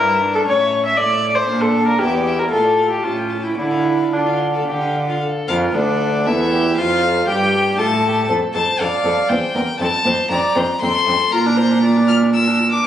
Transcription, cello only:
0.00 0.41 G2 medium
0.46 0.92 A2 medium
0.97 1.42 A2 medium
1.48 1.93 A#2 medium
1.99 2.45 E2 medium
2.51 2.97 A2 medium
3.03 3.51 A2 medium
3.58 4.06 D3 medium
4.12 4.60 D3 medium
4.67 5.16 D3 medium
5.48 5.73 F2 medium
5.75 6.28 D2 medium
6.26 6.77 E2 medium
6.78 7.26 F2 medium
7.27 7.77 G2 medium
7.78 8.28 A2 medium
8.29 8.37 F2 medium
8.54 8.62 F2 medium
8.79 8.87 F2 medium
9.04 9.12 F2 medium
9.30 9.38 E2 medium
9.54 9.62 E2 medium
9.80 9.88 F2 medium
10.05 10.13 F2 medium
10.30 10.38 F2 medium
10.56 10.64 F2 medium
10.82 10.90 F2 medium
11.07 11.15 F2 medium
11.32 12.80 A#2 medium

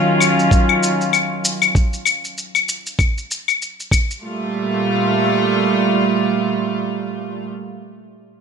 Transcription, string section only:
0.00 1.73 D#3 medium
0.00 1.73 F#3 medium
0.00 1.73 C#4 medium
0.00 1.73 F4 medium
4.22 7.46 A#2 medium
4.22 7.46 G3 medium
4.22 7.46 A3 medium
4.22 7.46 F4 medium

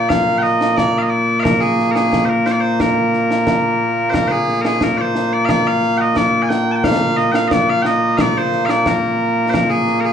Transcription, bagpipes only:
0.00 10.13 A#2 medium
0.00 10.13 A#3 medium
0.09 0.38 F5 loud
0.38 0.42 G5 loud
0.42 0.77 D#5 loud
0.77 0.98 D5 medium
0.98 1.02 F5 medium
1.02 1.09 D#5 medium
1.09 1.40 D5 medium
1.40 1.61 A#4 loud
1.40 1.43 F5 loud
1.61 1.91 G#4 medium
1.91 2.25 G#4 medium
1.91 1.95 A#4 medium
2.25 2.46 A#4 medium
2.25 2.29 C5 medium
2.46 2.51 C5 medium
2.51 2.60 D5 medium
2.60 2.80 C5 medium
2.80 4.10 A#4 medium
4.10 4.28 A#4 loud
4.10 4.14 C5 loud
4.28 4.61 G#4 medium
4.28 4.31 C5 medium
4.61 4.66 A#4 medium
4.66 4.83 G#4 medium
4.83 4.97 A#4 medium
4.97 5.33 C5 medium
4.97 5.01 D5 medium
5.33 5.45 D5 medium
5.45 5.50 F5 loud
5.50 5.67 D5 loud
5.67 5.97 F5 loud
5.97 6.16 D#5 loud
5.97 6.01 G5 loud
6.16 6.42 D5 loud
6.42 6.49 G#5 medium
6.49 6.71 G5 loud
6.71 6.84 G5 medium
6.71 6.75 A5 medium
6.84 7.17 F5 loud
7.17 7.32 D#5 loud
7.32 7.48 F5 loud
7.32 7.35 G5 loud
7.48 7.70 D5 medium
7.48 7.52 D#5 medium
7.70 7.82 F5 loud
7.82 7.86 G5 loud
7.86 8.17 D#5 loud
8.17 8.38 D5 loud
8.17 8.21 F5 loud
8.38 8.66 C5 loud
8.66 8.70 F5 medium
8.70 8.87 D5 medium
8.87 9.50 A#4 medium
9.50 9.54 C5 medium
9.54 9.70 A#4 medium
9.70 10.00 G#4 medium
10.00 10.05 A#4 medium
10.05 10.13 G#4 medium

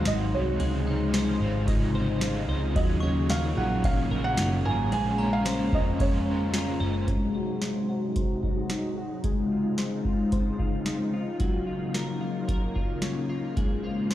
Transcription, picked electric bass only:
0.05 0.31 G#1 medium
0.33 0.58 C2 medium
0.60 1.37 C#2 loud
1.40 2.45 G#1 medium
2.48 2.74 C#2 medium
2.76 3.53 D#2 loud
3.56 4.08 A#1 medium
4.11 4.36 A#1 loud
4.38 4.63 F#1 medium
4.65 4.92 G#1 medium
4.92 5.69 A#1 medium
5.73 6.77 F2 medium
6.81 7.06 F#1 medium

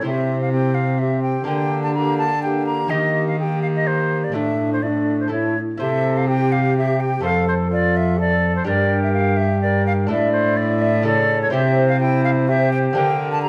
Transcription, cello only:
0.05 1.43 C3 medium
1.47 2.88 D3 medium
2.91 4.30 D#3 medium
4.34 5.57 A2 medium
5.79 7.19 C3 medium
7.23 8.64 F2 medium
8.68 10.11 G2 medium
10.10 11.52 A2 medium
11.53 12.93 C3 medium
12.96 13.49 D3 medium

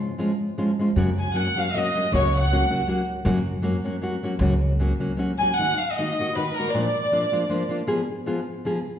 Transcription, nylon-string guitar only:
0.18 0.31 F3 medium
0.18 0.31 G#3 medium
0.18 0.31 C#4 medium
0.18 0.31 F4 medium
0.58 0.70 F3 medium
0.58 0.70 G#3 medium
0.58 0.70 C#4 medium
0.58 0.70 F4 medium
0.79 0.89 F3 medium
0.79 0.89 G#3 medium
0.79 0.90 C#4 medium
0.79 0.90 F4 medium
0.96 1.09 F#2 medium
0.96 1.09 C#3 medium
0.96 1.09 F#3 medium
0.96 1.09 A#3 medium
0.96 1.10 C#4 medium
0.96 1.09 F#4 medium
1.34 1.47 F#3 medium
1.34 1.48 A#3 medium
1.34 1.48 C#4 medium
1.34 1.48 F#4 medium
1.56 1.67 F#3 medium
1.56 1.67 A#3 soft
1.56 1.68 C#4 medium
1.56 1.68 F#4 medium
1.75 1.87 F#3 soft
1.75 1.87 A#3 medium
1.75 1.88 C#4 medium
1.75 1.88 F#4 medium
1.95 2.05 F#3 soft
1.95 2.06 A#3 medium
1.95 2.06 C#4 medium
1.95 2.06 F#4 medium
2.13 2.25 F#2 medium
2.13 2.25 C#3 medium
2.13 2.25 F#3 medium
2.13 2.25 A#3 medium
2.13 2.26 C#4 medium
2.13 2.26 F#4 medium
2.52 2.64 F#3 medium
2.52 2.64 A#3 medium
2.52 2.64 C#4 medium
2.52 2.64 F#4 medium
2.70 2.81 F#3 soft
2.70 2.81 A#3 medium
2.70 2.81 C#4 medium
2.70 2.82 F#4 medium
2.87 3.00 F#3 medium
2.87 3.01 A#3 medium
2.87 3.01 C#4 medium
2.87 3.01 F#4 medium
3.25 3.38 F#2 medium
3.25 3.38 C#3 medium
3.25 3.38 F#3 medium
3.25 3.38 A#3 medium
3.25 3.38 C#4 medium
3.25 3.38 F#4 medium
3.62 3.75 F#3 medium
3.62 3.76 A#3 medium
3.62 3.76 C#4 medium
3.62 3.76 F#4 medium
3.84 3.95 F#3 medium
3.84 3.95 A#3 medium
3.84 3.95 C#4 medium
3.84 3.95 F#4 medium
4.01 4.14 F#3 medium
4.01 4.14 A#3 medium
4.01 4.15 C#4 medium
4.01 4.15 F#4 medium
4.23 4.33 F#3 medium
4.23 4.34 A#3 medium
4.23 4.34 C#4 medium
4.23 4.34 F#4 medium
4.40 4.53 F#2 medium
4.40 4.53 C#3 medium
4.40 4.53 F#3 medium
4.40 4.53 A#3 medium
4.40 4.54 C#4 medium
4.40 4.53 F#4 medium
4.79 4.92 F#3 medium
4.79 4.92 A#3 medium
4.79 4.92 C#4 medium
4.79 4.93 F#4 medium
5.00 5.11 F#3 medium
5.00 5.11 A#3 medium
5.00 5.11 C#4 medium
5.00 5.11 F#4 medium
5.17 5.30 F#3 medium
5.17 5.31 A#3 medium
5.17 5.31 C#4 medium
5.17 5.32 F#4 medium
5.40 5.51 F#3 medium
5.40 5.51 A#3 soft
5.40 5.51 C#4 soft
5.40 5.52 F#4 medium
5.59 5.71 D#3 medium
5.59 5.71 A#3 medium
5.59 5.71 D#4 medium
5.59 5.71 F#4 medium
5.98 6.10 D#3 medium
5.98 6.10 A#3 soft
5.98 6.11 D#4 medium
5.98 6.11 F#4 medium
6.18 6.29 D#3 soft
6.18 6.29 A#3 soft
6.18 6.30 D#4 medium
6.18 6.30 F#4 medium
6.36 6.48 D#3 medium
6.36 6.49 A#3 medium
6.36 6.49 D#4 medium
6.36 6.49 F#4 medium
6.58 6.68 D#3 soft
6.58 6.68 A#3 medium
6.58 6.69 D#4 medium
6.58 6.69 F#4 medium
6.74 6.87 A#2 medium
6.74 6.87 F3 medium
6.74 6.87 A#3 medium
6.74 6.87 D4 medium
6.74 6.87 F4 medium
7.12 7.24 F3 medium
7.12 7.25 A#3 medium
7.12 7.25 D4 medium
7.12 7.25 F4 medium
7.32 7.43 F3 medium
7.32 7.43 A#3 medium
7.32 7.43 D4 medium
7.32 7.44 F4 medium
7.49 7.62 F3 medium
7.49 7.63 A#3 medium
7.49 7.62 D4 medium
7.49 7.63 F4 medium
7.69 7.80 F3 medium
7.69 7.81 A#3 medium
7.69 7.81 D4 medium
7.69 7.82 F4 medium
7.87 8.00 F3 medium
7.87 8.00 B3 medium
7.87 8.00 F4 medium
7.87 8.01 G#4 loud
8.26 8.39 F3 medium
8.26 8.39 B3 medium
8.26 8.39 F4 medium
8.26 8.40 G#4 medium
8.65 8.77 F3 medium
8.65 8.78 B3 medium
8.65 8.78 F4 medium
8.65 8.78 G#4 medium

